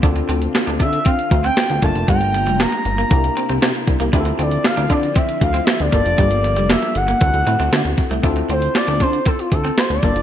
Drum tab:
HH |xxxxxxxxxxxxxxxx|xxxxxxxxxxxxxxxx|xxxxxxxxxxxxxxxx|xxxxxxxxxxxxxxox|
CP |----x-------x---|----x-------x---|----x-------x---|----x-------x---|
SD |----o-------o---|----o-------o---|----o-------o---|----o-------o---|
BD |o-----o-o-o---o-|o-------o-----o-|o-----o-o-o---o-|o-------o-----o-|

HH |xxxxxxxxxxxxxxxx|
CP |----x-------x---|
SD |----o-------o---|
BD |o-----o-o-o---o-|